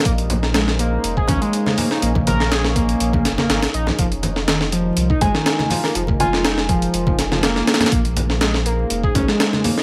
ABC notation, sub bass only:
X:1
M:4/4
L:1/16
Q:"Swing 16ths" 1/4=122
K:Bbdor
V:1 name="Sub bass" clef=bass
B,,,8 F,,, z D,, z4 z | B,,,8 B,,,2 F,,, A,,, A,,, z B,,, z | F,,,8 C,, z A,,, z4 z | F,,,8 F,,,6 z2 |
B,,,8 F,,, z D,, z4 z |]